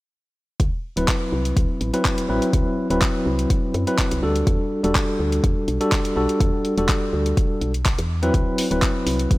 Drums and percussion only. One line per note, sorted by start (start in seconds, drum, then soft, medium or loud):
0.60 kick loud
0.60 closed hi-hat medium
0.97 closed hi-hat medium
1.08 kick loud
1.08 clap loud
1.08 closed hi-hat medium
1.45 closed hi-hat medium
1.57 kick loud
1.57 closed hi-hat medium
1.81 closed hi-hat soft
1.94 closed hi-hat medium
2.05 kick loud
2.05 clap loud
2.05 closed hi-hat medium
2.18 closed hi-hat medium
2.42 closed hi-hat medium
2.53 kick loud
2.53 closed hi-hat medium
2.90 closed hi-hat soft
3.02 kick loud
3.02 clap loud
3.02 closed hi-hat medium
3.39 closed hi-hat soft
3.50 kick loud
3.50 closed hi-hat medium
3.74 closed hi-hat soft
3.87 closed hi-hat soft
3.98 kick loud
3.98 clap loud
3.98 closed hi-hat medium
4.11 closed hi-hat medium
4.36 closed hi-hat medium
4.47 kick loud
4.47 closed hi-hat medium
4.84 closed hi-hat soft
4.95 kick loud
4.95 clap loud
4.95 closed hi-hat medium
5.32 closed hi-hat soft
5.44 kick loud
5.44 closed hi-hat medium
5.68 closed hi-hat soft
5.81 closed hi-hat soft
5.92 kick loud
5.92 clap loud
5.92 closed hi-hat medium
6.05 closed hi-hat medium
6.29 closed hi-hat soft
6.40 kick loud
6.40 closed hi-hat medium
6.65 closed hi-hat soft
6.78 closed hi-hat soft
6.89 kick loud
6.89 clap loud
6.89 closed hi-hat medium
7.26 closed hi-hat soft
7.37 kick loud
7.37 closed hi-hat medium
7.61 closed hi-hat soft
7.74 closed hi-hat soft
7.86 kick loud
7.86 clap loud
7.86 closed hi-hat medium
7.99 closed hi-hat medium
8.23 closed hi-hat soft
8.34 kick loud
8.34 closed hi-hat medium
8.58 open hi-hat loud
8.71 closed hi-hat soft
8.82 kick loud
8.82 clap loud
8.82 closed hi-hat medium
9.07 open hi-hat loud
9.19 closed hi-hat soft
9.31 kick loud
9.31 closed hi-hat medium